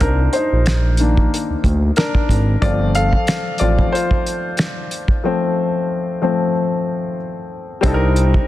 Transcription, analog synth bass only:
0.02 0.28 C2 medium
0.52 1.28 A#1 medium
1.50 1.56 D2 medium
1.64 1.91 D2 medium
2.30 2.57 G#1 medium
2.63 3.16 G1 loud
3.61 3.87 A1 medium
7.84 8.38 C2 loud

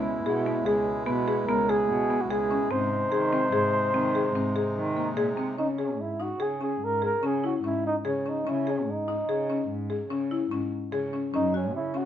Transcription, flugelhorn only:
0.00 0.67 E4 medium
0.66 1.05 G#4 medium
1.06 1.49 B4 medium
1.48 1.71 A#4 medium
1.69 2.22 G#4 medium
2.21 2.32 F#4 medium
2.30 2.73 G#4 medium
2.71 5.17 C5 loud
5.58 5.67 D#4 medium
5.80 6.02 C#4 medium
6.01 6.23 E4 medium
6.22 6.44 F#4 medium
6.42 6.62 G#4 medium
6.63 6.86 G#4 medium
6.84 7.03 A#4 medium
7.05 7.28 A#4 medium
7.26 7.45 G#4 medium
7.46 7.55 F#4 medium
7.66 7.84 E4 medium
7.87 7.95 D#4 medium
8.08 8.30 C#4 medium
8.29 8.51 D#4 medium
8.49 8.72 E4 medium
8.70 8.92 C#4 medium
8.90 9.71 D#4 medium
11.35 11.53 D#4 medium
11.56 11.74 C#4 medium
11.76 11.98 E4 medium
11.97 12.05 F#4 medium

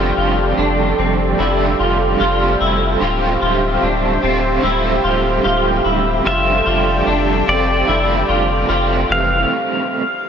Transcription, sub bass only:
0.00 0.12 F1 loud
0.17 0.53 F1 loud
0.58 0.93 F1 medium
0.98 1.34 F1 loud
1.39 1.75 F1 medium
1.79 2.15 F1 loud
2.20 2.56 F1 loud
2.60 2.96 F1 loud
3.01 3.37 D1 loud
3.41 3.77 D1 loud
3.82 4.18 D1 loud
4.23 4.59 D1 loud
4.63 4.99 D1 medium
5.04 5.39 D1 loud
5.45 5.80 D1 loud
5.85 6.20 D1 loud
6.25 6.61 F1 loud
6.66 7.02 F1 loud
7.07 7.42 F1 loud
7.48 7.83 F1 loud
7.88 8.24 F1 medium
8.29 8.64 F1 loud
8.69 9.04 F1 loud
9.09 9.45 F1 loud

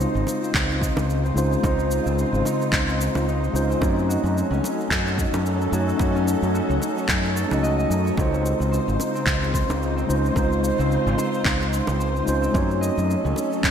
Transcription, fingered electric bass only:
0.15 0.23 G#1 medium
0.54 0.89 C#2 medium
0.97 1.30 C#2 medium
1.35 1.55 C#2 medium
1.63 1.98 C#2 medium
2.06 2.23 C#2 medium
2.33 2.41 G#1 medium
2.72 3.07 C#2 medium
3.15 3.48 C#2 medium
3.54 3.73 C#2 medium
3.81 4.16 F#2 loud
4.24 4.41 F#2 medium
4.51 4.59 C#2 loud
4.91 5.25 F#2 medium
5.33 5.66 F#2 medium
5.72 5.92 F#2 medium
6.00 6.34 F#2 medium
6.42 6.60 F#2 medium
6.70 6.78 C#2 medium
7.08 7.43 F#2 medium
7.51 7.84 C#2 medium
7.90 8.10 F#2 medium
8.18 8.52 C#2 loud
8.60 8.78 C#2 medium
8.88 8.96 G#1 medium
9.26 9.61 C#2 medium
9.69 10.02 C#2 medium
10.09 10.29 C#2 medium
10.36 10.71 C#2 loud
10.79 10.96 C#2 medium
11.06 11.14 G#1 medium
11.45 11.80 C#2 medium
11.88 12.21 C#2 medium
12.28 12.47 C#2 medium
12.54 12.89 F#2 loud
12.98 13.14 F#2 medium
13.25 13.33 C#2 medium
13.63 13.71 F#2 medium

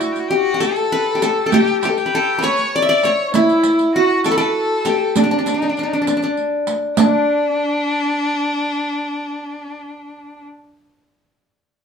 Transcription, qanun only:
0.00 0.28 D4 medium
0.00 1.01 E4 medium
0.00 0.37 F#4 loud
0.31 0.54 G4 medium
0.54 1.15 G4 medium
0.60 1.22 A4 medium
0.92 2.02 B4 loud
1.15 1.53 G4 medium
1.22 1.46 A4 medium
1.46 2.14 A4 medium
1.54 1.85 G4 loud
1.85 3.11 G4 medium
2.06 2.38 B4 medium
2.15 3.32 A4 medium
2.38 3.48 B4 medium
2.44 2.82 C#5 loud
2.76 2.89 D5 loud
2.82 3.74 E5 medium
2.89 3.11 D5 loud
3.05 4.07 C#5 medium
3.35 4.74 E4 loud
3.96 4.92 F#4 medium
4.26 4.37 A4 medium
4.31 5.41 B4 medium
4.38 5.55 A4 loud
4.86 6.11 G4 medium
5.17 5.23 D4 medium
5.24 5.31 D4 medium
5.31 5.38 D4 medium
5.39 5.46 D4 medium
5.46 5.54 D4 medium
5.54 5.62 D4 soft
5.63 5.69 D4 soft
5.70 5.79 D4 soft
5.79 5.83 D4 medium
5.83 5.93 D4 soft
5.93 6.01 D4 medium
6.02 6.08 D4 medium
6.08 6.16 D4 medium
6.17 6.23 D4 medium
6.24 6.98 D4 medium
6.99 10.46 D4 medium

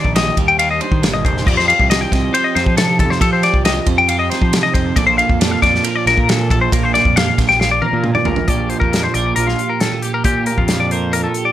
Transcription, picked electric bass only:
0.05 0.30 A#1 medium
0.38 0.79 D#2 loud
0.91 1.00 D#3 medium
1.03 1.22 G1 medium
1.25 1.44 F1 medium
1.47 1.72 F2 medium
1.80 2.05 C2 medium
2.12 2.29 C2 medium
2.56 2.64 F2 loud
2.67 3.01 F3 medium
2.99 3.16 F2 medium
3.21 3.46 F3 loud
3.54 3.79 C2 loud
3.87 4.29 F2 medium
4.42 4.59 F3 medium
4.74 4.91 F2 medium
4.96 5.22 A#1 medium
5.30 5.55 F2 medium
5.63 5.79 F2 medium
6.06 6.14 A#1 medium
6.18 6.52 A#2 medium
6.51 6.67 A#1 medium
6.73 6.98 A#1 medium
7.05 7.30 F2 loud
7.38 7.80 A#1 medium
7.93 8.10 A#2 medium
8.27 8.43 A#1 medium
8.48 8.73 A#1 medium
8.82 9.07 F2 medium
9.15 9.31 A#1 medium
9.37 9.54 A#1 medium
10.25 10.50 A#2 medium
10.58 11.26 F2 medium

